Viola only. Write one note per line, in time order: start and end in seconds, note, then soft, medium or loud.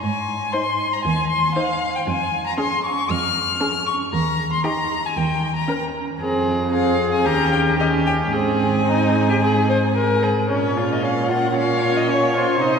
0.54 0.92 D#4 soft
1.56 1.94 D#4 soft
2.58 2.96 C#4 soft
3.60 3.99 C#4 soft
4.64 5.03 D#4 soft
5.68 6.07 C#4 soft
6.20 6.69 C4 soft
6.73 7.27 C4 soft
7.25 7.79 C#4 soft
7.80 8.35 C#4 soft
8.34 10.31 C4 soft
11.57 12.63 C#5 soft
12.61 12.79 C5 soft